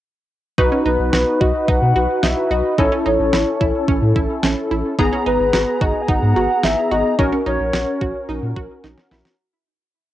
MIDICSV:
0, 0, Header, 1, 6, 480
1, 0, Start_track
1, 0, Key_signature, 5, "major"
1, 0, Tempo, 550459
1, 508, Time_signature, 4, 2, 24, 8
1, 8840, End_track
2, 0, Start_track
2, 0, Title_t, "Soft synth lead"
2, 0, Program_c, 0, 80
2, 745, Note_on_c, 0, 71, 96
2, 1225, Note_on_c, 0, 75, 96
2, 1238, Note_off_c, 0, 71, 0
2, 1468, Note_on_c, 0, 78, 114
2, 1481, Note_off_c, 0, 75, 0
2, 1948, Note_on_c, 0, 76, 99
2, 1961, Note_off_c, 0, 78, 0
2, 2189, Note_on_c, 0, 75, 94
2, 2202, Note_off_c, 0, 76, 0
2, 2424, Note_off_c, 0, 75, 0
2, 2430, Note_on_c, 0, 73, 97
2, 2537, Note_off_c, 0, 73, 0
2, 2668, Note_on_c, 0, 73, 90
2, 3353, Note_off_c, 0, 73, 0
2, 4588, Note_on_c, 0, 71, 96
2, 5070, Note_on_c, 0, 75, 97
2, 5083, Note_off_c, 0, 71, 0
2, 5248, Note_on_c, 0, 80, 81
2, 5261, Note_off_c, 0, 75, 0
2, 5308, Note_on_c, 0, 78, 109
2, 5322, Note_off_c, 0, 80, 0
2, 5789, Note_on_c, 0, 76, 100
2, 5802, Note_off_c, 0, 78, 0
2, 6026, Note_on_c, 0, 75, 93
2, 6039, Note_off_c, 0, 76, 0
2, 6260, Note_off_c, 0, 75, 0
2, 6265, Note_on_c, 0, 73, 99
2, 6374, Note_off_c, 0, 73, 0
2, 6508, Note_on_c, 0, 73, 90
2, 7193, Note_off_c, 0, 73, 0
2, 8840, End_track
3, 0, Start_track
3, 0, Title_t, "Analog polysynth"
3, 0, Program_c, 1, 90
3, 507, Note_on_c, 1, 63, 76
3, 508, Note_on_c, 1, 66, 70
3, 508, Note_on_c, 1, 71, 85
3, 2393, Note_off_c, 1, 63, 0
3, 2393, Note_off_c, 1, 66, 0
3, 2393, Note_off_c, 1, 71, 0
3, 2427, Note_on_c, 1, 64, 59
3, 2428, Note_on_c, 1, 61, 65
3, 2428, Note_on_c, 1, 69, 74
3, 4313, Note_off_c, 1, 61, 0
3, 4313, Note_off_c, 1, 64, 0
3, 4313, Note_off_c, 1, 69, 0
3, 4348, Note_on_c, 1, 82, 87
3, 4349, Note_on_c, 1, 59, 80
3, 4349, Note_on_c, 1, 68, 74
3, 6233, Note_off_c, 1, 82, 0
3, 6234, Note_off_c, 1, 59, 0
3, 6234, Note_off_c, 1, 68, 0
3, 6269, Note_on_c, 1, 61, 67
3, 6270, Note_on_c, 1, 66, 60
3, 6270, Note_on_c, 1, 70, 72
3, 8154, Note_off_c, 1, 61, 0
3, 8154, Note_off_c, 1, 66, 0
3, 8154, Note_off_c, 1, 70, 0
3, 8840, End_track
4, 0, Start_track
4, 0, Title_t, "Synth arpeggio sound"
4, 0, Program_c, 2, 84
4, 508, Note_on_c, 2, 63, 88
4, 593, Note_off_c, 2, 63, 0
4, 627, Note_on_c, 2, 61, 70
4, 712, Note_off_c, 2, 61, 0
4, 747, Note_on_c, 2, 63, 78
4, 917, Note_off_c, 2, 63, 0
4, 987, Note_on_c, 2, 66, 84
4, 1157, Note_off_c, 2, 66, 0
4, 1227, Note_on_c, 2, 66, 76
4, 1397, Note_off_c, 2, 66, 0
4, 1467, Note_on_c, 2, 63, 88
4, 1636, Note_off_c, 2, 63, 0
4, 1707, Note_on_c, 2, 66, 73
4, 1877, Note_off_c, 2, 66, 0
4, 1946, Note_on_c, 2, 63, 85
4, 2116, Note_off_c, 2, 63, 0
4, 2187, Note_on_c, 2, 66, 75
4, 2356, Note_off_c, 2, 66, 0
4, 2427, Note_on_c, 2, 63, 91
4, 2512, Note_off_c, 2, 63, 0
4, 2546, Note_on_c, 2, 61, 76
4, 2631, Note_off_c, 2, 61, 0
4, 2665, Note_on_c, 2, 63, 77
4, 2836, Note_off_c, 2, 63, 0
4, 2906, Note_on_c, 2, 64, 85
4, 3076, Note_off_c, 2, 64, 0
4, 3147, Note_on_c, 2, 64, 80
4, 3316, Note_off_c, 2, 64, 0
4, 3387, Note_on_c, 2, 61, 88
4, 3557, Note_off_c, 2, 61, 0
4, 3627, Note_on_c, 2, 64, 77
4, 3797, Note_off_c, 2, 64, 0
4, 3867, Note_on_c, 2, 61, 83
4, 4037, Note_off_c, 2, 61, 0
4, 4108, Note_on_c, 2, 64, 76
4, 4277, Note_off_c, 2, 64, 0
4, 4348, Note_on_c, 2, 63, 90
4, 4433, Note_off_c, 2, 63, 0
4, 4468, Note_on_c, 2, 61, 73
4, 4553, Note_off_c, 2, 61, 0
4, 4588, Note_on_c, 2, 63, 80
4, 4757, Note_off_c, 2, 63, 0
4, 4827, Note_on_c, 2, 66, 87
4, 4997, Note_off_c, 2, 66, 0
4, 5068, Note_on_c, 2, 66, 80
4, 5237, Note_off_c, 2, 66, 0
4, 5309, Note_on_c, 2, 63, 85
4, 5478, Note_off_c, 2, 63, 0
4, 5549, Note_on_c, 2, 66, 76
4, 5718, Note_off_c, 2, 66, 0
4, 5789, Note_on_c, 2, 63, 86
4, 5958, Note_off_c, 2, 63, 0
4, 6028, Note_on_c, 2, 66, 76
4, 6198, Note_off_c, 2, 66, 0
4, 6269, Note_on_c, 2, 63, 92
4, 6353, Note_off_c, 2, 63, 0
4, 6388, Note_on_c, 2, 61, 76
4, 6473, Note_off_c, 2, 61, 0
4, 6508, Note_on_c, 2, 63, 77
4, 6677, Note_off_c, 2, 63, 0
4, 6748, Note_on_c, 2, 66, 86
4, 6917, Note_off_c, 2, 66, 0
4, 6988, Note_on_c, 2, 66, 79
4, 7157, Note_off_c, 2, 66, 0
4, 7229, Note_on_c, 2, 63, 90
4, 7398, Note_off_c, 2, 63, 0
4, 7468, Note_on_c, 2, 66, 77
4, 7637, Note_off_c, 2, 66, 0
4, 7708, Note_on_c, 2, 63, 85
4, 7877, Note_off_c, 2, 63, 0
4, 7950, Note_on_c, 2, 64, 76
4, 8118, Note_off_c, 2, 64, 0
4, 8840, End_track
5, 0, Start_track
5, 0, Title_t, "Analog synth bass"
5, 0, Program_c, 3, 38
5, 507, Note_on_c, 3, 35, 107
5, 604, Note_off_c, 3, 35, 0
5, 747, Note_on_c, 3, 35, 97
5, 844, Note_off_c, 3, 35, 0
5, 866, Note_on_c, 3, 35, 91
5, 963, Note_off_c, 3, 35, 0
5, 987, Note_on_c, 3, 35, 100
5, 1084, Note_off_c, 3, 35, 0
5, 1229, Note_on_c, 3, 35, 106
5, 1325, Note_off_c, 3, 35, 0
5, 1467, Note_on_c, 3, 35, 98
5, 1564, Note_off_c, 3, 35, 0
5, 1586, Note_on_c, 3, 47, 92
5, 1683, Note_off_c, 3, 47, 0
5, 1706, Note_on_c, 3, 35, 104
5, 1803, Note_off_c, 3, 35, 0
5, 1945, Note_on_c, 3, 35, 96
5, 2043, Note_off_c, 3, 35, 0
5, 2185, Note_on_c, 3, 35, 99
5, 2283, Note_off_c, 3, 35, 0
5, 2427, Note_on_c, 3, 33, 100
5, 2524, Note_off_c, 3, 33, 0
5, 2668, Note_on_c, 3, 33, 90
5, 2765, Note_off_c, 3, 33, 0
5, 2787, Note_on_c, 3, 33, 93
5, 2884, Note_off_c, 3, 33, 0
5, 2908, Note_on_c, 3, 33, 105
5, 3004, Note_off_c, 3, 33, 0
5, 3149, Note_on_c, 3, 33, 95
5, 3245, Note_off_c, 3, 33, 0
5, 3387, Note_on_c, 3, 33, 101
5, 3484, Note_off_c, 3, 33, 0
5, 3507, Note_on_c, 3, 45, 90
5, 3604, Note_off_c, 3, 45, 0
5, 3628, Note_on_c, 3, 33, 96
5, 3725, Note_off_c, 3, 33, 0
5, 3868, Note_on_c, 3, 33, 96
5, 3964, Note_off_c, 3, 33, 0
5, 4108, Note_on_c, 3, 33, 94
5, 4204, Note_off_c, 3, 33, 0
5, 4348, Note_on_c, 3, 32, 105
5, 4444, Note_off_c, 3, 32, 0
5, 4589, Note_on_c, 3, 32, 93
5, 4685, Note_off_c, 3, 32, 0
5, 4709, Note_on_c, 3, 32, 107
5, 4805, Note_off_c, 3, 32, 0
5, 4830, Note_on_c, 3, 32, 99
5, 4925, Note_off_c, 3, 32, 0
5, 5070, Note_on_c, 3, 32, 97
5, 5166, Note_off_c, 3, 32, 0
5, 5308, Note_on_c, 3, 32, 106
5, 5405, Note_off_c, 3, 32, 0
5, 5430, Note_on_c, 3, 44, 92
5, 5526, Note_off_c, 3, 44, 0
5, 5549, Note_on_c, 3, 32, 108
5, 5645, Note_off_c, 3, 32, 0
5, 5789, Note_on_c, 3, 32, 104
5, 5885, Note_off_c, 3, 32, 0
5, 6029, Note_on_c, 3, 32, 101
5, 6125, Note_off_c, 3, 32, 0
5, 6268, Note_on_c, 3, 34, 112
5, 6364, Note_off_c, 3, 34, 0
5, 6509, Note_on_c, 3, 34, 105
5, 6605, Note_off_c, 3, 34, 0
5, 6630, Note_on_c, 3, 34, 101
5, 6725, Note_off_c, 3, 34, 0
5, 6749, Note_on_c, 3, 34, 101
5, 6845, Note_off_c, 3, 34, 0
5, 6990, Note_on_c, 3, 34, 102
5, 7086, Note_off_c, 3, 34, 0
5, 7229, Note_on_c, 3, 34, 101
5, 7325, Note_off_c, 3, 34, 0
5, 7349, Note_on_c, 3, 46, 92
5, 7445, Note_off_c, 3, 46, 0
5, 7469, Note_on_c, 3, 34, 103
5, 7565, Note_off_c, 3, 34, 0
5, 7708, Note_on_c, 3, 34, 93
5, 7805, Note_off_c, 3, 34, 0
5, 7949, Note_on_c, 3, 34, 103
5, 8045, Note_off_c, 3, 34, 0
5, 8840, End_track
6, 0, Start_track
6, 0, Title_t, "Drums"
6, 507, Note_on_c, 9, 36, 105
6, 594, Note_off_c, 9, 36, 0
6, 985, Note_on_c, 9, 38, 110
6, 1072, Note_off_c, 9, 38, 0
6, 1229, Note_on_c, 9, 36, 88
6, 1316, Note_off_c, 9, 36, 0
6, 1467, Note_on_c, 9, 36, 97
6, 1554, Note_off_c, 9, 36, 0
6, 1945, Note_on_c, 9, 38, 108
6, 2032, Note_off_c, 9, 38, 0
6, 2427, Note_on_c, 9, 36, 105
6, 2514, Note_off_c, 9, 36, 0
6, 2904, Note_on_c, 9, 38, 114
6, 2991, Note_off_c, 9, 38, 0
6, 3148, Note_on_c, 9, 36, 86
6, 3236, Note_off_c, 9, 36, 0
6, 3387, Note_on_c, 9, 36, 104
6, 3474, Note_off_c, 9, 36, 0
6, 3628, Note_on_c, 9, 36, 79
6, 3716, Note_off_c, 9, 36, 0
6, 3865, Note_on_c, 9, 38, 113
6, 3952, Note_off_c, 9, 38, 0
6, 4347, Note_on_c, 9, 36, 105
6, 4434, Note_off_c, 9, 36, 0
6, 4825, Note_on_c, 9, 38, 111
6, 4912, Note_off_c, 9, 38, 0
6, 5070, Note_on_c, 9, 36, 87
6, 5157, Note_off_c, 9, 36, 0
6, 5308, Note_on_c, 9, 36, 101
6, 5395, Note_off_c, 9, 36, 0
6, 5786, Note_on_c, 9, 38, 111
6, 5873, Note_off_c, 9, 38, 0
6, 6268, Note_on_c, 9, 36, 105
6, 6355, Note_off_c, 9, 36, 0
6, 6746, Note_on_c, 9, 38, 113
6, 6833, Note_off_c, 9, 38, 0
6, 6990, Note_on_c, 9, 36, 88
6, 7077, Note_off_c, 9, 36, 0
6, 7469, Note_on_c, 9, 36, 83
6, 7557, Note_off_c, 9, 36, 0
6, 7708, Note_on_c, 9, 38, 52
6, 7795, Note_off_c, 9, 38, 0
6, 7827, Note_on_c, 9, 38, 57
6, 7915, Note_off_c, 9, 38, 0
6, 7947, Note_on_c, 9, 38, 81
6, 8034, Note_off_c, 9, 38, 0
6, 8068, Note_on_c, 9, 38, 78
6, 8155, Note_off_c, 9, 38, 0
6, 8840, End_track
0, 0, End_of_file